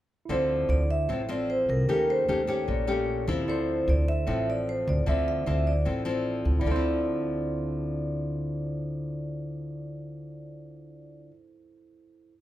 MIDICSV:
0, 0, Header, 1, 5, 480
1, 0, Start_track
1, 0, Key_signature, -1, "minor"
1, 0, Tempo, 397614
1, 349, Time_signature, 4, 2, 24, 8
1, 14981, End_track
2, 0, Start_track
2, 0, Title_t, "Vibraphone"
2, 0, Program_c, 0, 11
2, 374, Note_on_c, 0, 72, 81
2, 843, Note_on_c, 0, 74, 86
2, 856, Note_off_c, 0, 72, 0
2, 1060, Note_off_c, 0, 74, 0
2, 1093, Note_on_c, 0, 76, 90
2, 1530, Note_off_c, 0, 76, 0
2, 1573, Note_on_c, 0, 74, 79
2, 1809, Note_on_c, 0, 72, 79
2, 1810, Note_off_c, 0, 74, 0
2, 2048, Note_off_c, 0, 72, 0
2, 2048, Note_on_c, 0, 70, 79
2, 2268, Note_off_c, 0, 70, 0
2, 2283, Note_on_c, 0, 70, 77
2, 2525, Note_off_c, 0, 70, 0
2, 2538, Note_on_c, 0, 72, 86
2, 3016, Note_on_c, 0, 73, 84
2, 3021, Note_off_c, 0, 72, 0
2, 3919, Note_off_c, 0, 73, 0
2, 4220, Note_on_c, 0, 72, 84
2, 4702, Note_on_c, 0, 74, 85
2, 4703, Note_off_c, 0, 72, 0
2, 4914, Note_off_c, 0, 74, 0
2, 4931, Note_on_c, 0, 76, 89
2, 5419, Note_off_c, 0, 76, 0
2, 5430, Note_on_c, 0, 74, 77
2, 5661, Note_off_c, 0, 74, 0
2, 5662, Note_on_c, 0, 72, 78
2, 5897, Note_off_c, 0, 72, 0
2, 5904, Note_on_c, 0, 74, 77
2, 6006, Note_off_c, 0, 74, 0
2, 6131, Note_on_c, 0, 76, 88
2, 6361, Note_off_c, 0, 76, 0
2, 6375, Note_on_c, 0, 76, 83
2, 6848, Note_on_c, 0, 74, 70
2, 6860, Note_off_c, 0, 76, 0
2, 7754, Note_off_c, 0, 74, 0
2, 8060, Note_on_c, 0, 74, 70
2, 13644, Note_off_c, 0, 74, 0
2, 14981, End_track
3, 0, Start_track
3, 0, Title_t, "Tine electric piano"
3, 0, Program_c, 1, 4
3, 307, Note_on_c, 1, 64, 38
3, 356, Note_on_c, 1, 69, 37
3, 381, Note_on_c, 1, 72, 48
3, 608, Control_c, 1, 64, 127
3, 2213, Note_off_c, 1, 64, 0
3, 2238, Note_off_c, 1, 69, 0
3, 2244, Note_on_c, 1, 61, 41
3, 2250, Note_off_c, 1, 72, 0
3, 2265, Note_on_c, 1, 67, 41
3, 2289, Control_c, 1, 64, 0
3, 2291, Note_on_c, 1, 69, 39
3, 2318, Note_on_c, 1, 58, 53
3, 2477, Control_c, 1, 64, 127
3, 3436, Note_off_c, 1, 61, 0
3, 3447, Note_off_c, 1, 67, 0
3, 3460, Note_off_c, 1, 69, 0
3, 3468, Note_on_c, 1, 61, 34
3, 3474, Note_off_c, 1, 58, 0
3, 3479, Note_on_c, 1, 67, 34
3, 3492, Note_on_c, 1, 69, 34
3, 3502, Note_on_c, 1, 58, 39
3, 4167, Note_on_c, 1, 64, 45
3, 4193, Note_off_c, 1, 61, 0
3, 4198, Note_off_c, 1, 67, 0
3, 4205, Note_off_c, 1, 69, 0
3, 4210, Note_off_c, 1, 58, 0
3, 4214, Control_c, 1, 64, 0
3, 4217, Note_on_c, 1, 69, 38
3, 4238, Note_on_c, 1, 72, 51
3, 4406, Control_c, 1, 64, 127
3, 7944, Note_off_c, 1, 64, 0
3, 7958, Note_on_c, 1, 64, 55
3, 7999, Note_off_c, 1, 69, 0
3, 8009, Note_off_c, 1, 72, 0
3, 8050, Control_c, 1, 64, 0
3, 8057, Note_on_c, 1, 69, 46
3, 8104, Note_on_c, 1, 72, 61
3, 8272, Control_c, 1, 64, 127
3, 13593, Note_off_c, 1, 64, 0
3, 13643, Note_off_c, 1, 69, 0
3, 13666, Note_off_c, 1, 72, 0
3, 14902, Control_c, 1, 64, 0
3, 14981, End_track
4, 0, Start_track
4, 0, Title_t, "Nylon-string guitar"
4, 0, Program_c, 2, 24
4, 353, Note_on_c, 2, 50, 53
4, 355, Note_on_c, 2, 53, 59
4, 358, Note_on_c, 2, 60, 51
4, 365, Note_on_c, 2, 64, 58
4, 996, Note_off_c, 2, 53, 0
4, 1000, Note_off_c, 2, 60, 0
4, 1002, Note_off_c, 2, 64, 0
4, 1289, Note_off_c, 2, 50, 0
4, 1312, Note_on_c, 2, 45, 49
4, 1315, Note_on_c, 2, 53, 45
4, 1319, Note_on_c, 2, 60, 48
4, 1325, Note_on_c, 2, 64, 57
4, 1454, Note_off_c, 2, 53, 0
4, 1456, Note_off_c, 2, 60, 0
4, 1459, Note_off_c, 2, 64, 0
4, 1552, Note_on_c, 2, 53, 60
4, 1560, Note_on_c, 2, 60, 55
4, 1560, Note_on_c, 2, 64, 64
4, 2235, Note_off_c, 2, 53, 0
4, 2236, Note_off_c, 2, 60, 0
4, 2239, Note_off_c, 2, 64, 0
4, 2250, Note_off_c, 2, 45, 0
4, 2278, Note_on_c, 2, 57, 58
4, 2279, Note_on_c, 2, 51, 57
4, 2282, Note_on_c, 2, 61, 56
4, 2287, Note_on_c, 2, 67, 62
4, 2717, Note_off_c, 2, 57, 0
4, 2720, Note_off_c, 2, 61, 0
4, 2722, Note_off_c, 2, 67, 0
4, 2758, Note_on_c, 2, 57, 50
4, 2765, Note_on_c, 2, 61, 54
4, 2767, Note_on_c, 2, 67, 65
4, 2898, Note_off_c, 2, 57, 0
4, 2900, Note_off_c, 2, 61, 0
4, 2902, Note_off_c, 2, 67, 0
4, 2986, Note_on_c, 2, 57, 57
4, 2997, Note_on_c, 2, 61, 60
4, 2999, Note_on_c, 2, 67, 56
4, 3214, Note_off_c, 2, 51, 0
4, 3232, Note_on_c, 2, 46, 46
4, 3434, Note_off_c, 2, 57, 0
4, 3436, Note_off_c, 2, 61, 0
4, 3439, Note_off_c, 2, 67, 0
4, 3469, Note_on_c, 2, 57, 62
4, 3474, Note_on_c, 2, 61, 63
4, 3479, Note_on_c, 2, 67, 61
4, 3914, Note_off_c, 2, 57, 0
4, 3917, Note_off_c, 2, 61, 0
4, 3919, Note_off_c, 2, 67, 0
4, 3954, Note_on_c, 2, 53, 62
4, 3964, Note_on_c, 2, 60, 55
4, 3966, Note_on_c, 2, 64, 79
4, 4171, Note_off_c, 2, 46, 0
4, 4199, Note_on_c, 2, 50, 55
4, 4879, Note_off_c, 2, 53, 0
4, 4880, Note_off_c, 2, 60, 0
4, 4884, Note_off_c, 2, 64, 0
4, 5135, Note_off_c, 2, 50, 0
4, 5149, Note_on_c, 2, 45, 46
4, 5157, Note_on_c, 2, 53, 52
4, 5157, Note_on_c, 2, 60, 50
4, 5165, Note_on_c, 2, 64, 52
4, 6077, Note_off_c, 2, 53, 0
4, 6080, Note_off_c, 2, 60, 0
4, 6081, Note_off_c, 2, 64, 0
4, 6091, Note_off_c, 2, 45, 0
4, 6111, Note_on_c, 2, 50, 58
4, 6111, Note_on_c, 2, 53, 54
4, 6116, Note_on_c, 2, 60, 50
4, 6121, Note_on_c, 2, 64, 57
4, 6555, Note_off_c, 2, 53, 0
4, 6559, Note_off_c, 2, 60, 0
4, 6561, Note_off_c, 2, 64, 0
4, 6595, Note_on_c, 2, 53, 49
4, 6601, Note_on_c, 2, 60, 53
4, 6608, Note_on_c, 2, 64, 65
4, 6905, Note_off_c, 2, 53, 0
4, 6908, Note_off_c, 2, 60, 0
4, 6912, Note_off_c, 2, 64, 0
4, 7051, Note_off_c, 2, 50, 0
4, 7065, Note_on_c, 2, 45, 50
4, 7069, Note_on_c, 2, 53, 43
4, 7072, Note_on_c, 2, 60, 48
4, 7079, Note_on_c, 2, 64, 52
4, 7273, Note_off_c, 2, 53, 0
4, 7277, Note_off_c, 2, 60, 0
4, 7278, Note_off_c, 2, 64, 0
4, 7304, Note_on_c, 2, 53, 62
4, 7312, Note_on_c, 2, 60, 58
4, 7313, Note_on_c, 2, 64, 64
4, 7977, Note_on_c, 2, 50, 66
4, 7992, Note_off_c, 2, 53, 0
4, 7994, Note_off_c, 2, 60, 0
4, 7996, Note_off_c, 2, 64, 0
4, 8007, Note_off_c, 2, 45, 0
4, 8045, Note_on_c, 2, 53, 57
4, 8102, Note_on_c, 2, 60, 59
4, 8157, Note_on_c, 2, 64, 69
4, 13651, Note_off_c, 2, 50, 0
4, 13685, Note_off_c, 2, 53, 0
4, 13713, Note_off_c, 2, 60, 0
4, 13741, Note_off_c, 2, 64, 0
4, 14981, End_track
5, 0, Start_track
5, 0, Title_t, "Upright bass"
5, 0, Program_c, 3, 32
5, 352, Note_on_c, 3, 38, 75
5, 798, Note_off_c, 3, 38, 0
5, 830, Note_on_c, 3, 38, 85
5, 1277, Note_off_c, 3, 38, 0
5, 1314, Note_on_c, 3, 33, 76
5, 1985, Note_off_c, 3, 33, 0
5, 2037, Note_on_c, 3, 36, 80
5, 2278, Note_off_c, 3, 36, 0
5, 2278, Note_on_c, 3, 39, 82
5, 2723, Note_off_c, 3, 39, 0
5, 2758, Note_on_c, 3, 39, 85
5, 3203, Note_off_c, 3, 39, 0
5, 3240, Note_on_c, 3, 34, 83
5, 3910, Note_off_c, 3, 34, 0
5, 3955, Note_on_c, 3, 39, 90
5, 4199, Note_off_c, 3, 39, 0
5, 4199, Note_on_c, 3, 38, 88
5, 4645, Note_off_c, 3, 38, 0
5, 4679, Note_on_c, 3, 38, 89
5, 5125, Note_off_c, 3, 38, 0
5, 5162, Note_on_c, 3, 33, 84
5, 5832, Note_off_c, 3, 33, 0
5, 5885, Note_on_c, 3, 38, 95
5, 6105, Note_off_c, 3, 38, 0
5, 6122, Note_on_c, 3, 38, 80
5, 6567, Note_off_c, 3, 38, 0
5, 6605, Note_on_c, 3, 38, 92
5, 7048, Note_off_c, 3, 38, 0
5, 7078, Note_on_c, 3, 33, 79
5, 7749, Note_off_c, 3, 33, 0
5, 7790, Note_on_c, 3, 38, 85
5, 8016, Note_off_c, 3, 38, 0
5, 8030, Note_on_c, 3, 38, 77
5, 13629, Note_off_c, 3, 38, 0
5, 14981, End_track
0, 0, End_of_file